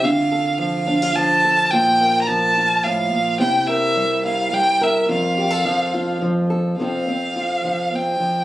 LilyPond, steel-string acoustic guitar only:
\new Staff \with { instrumentName = "Steel-string acoustic guitar" } { \time 3/4 \key f \major \tempo 4 = 107 << { f'8 a'4 d'16 f'8. a'8 | f'8 bes'4 f'4. | e'8 bes'4 e'4 bes'8 | f'8 g'16 a'8. f'4 a'8 |
<f c' f' a'>8 c'8 f'4 c'4 | } \\ { d4 f4 f4 | bes,4 f4 a,8 bes,8 | c4 g4 g4 | f,4 f4 f4 |
f,4. f4 f8 | } >> }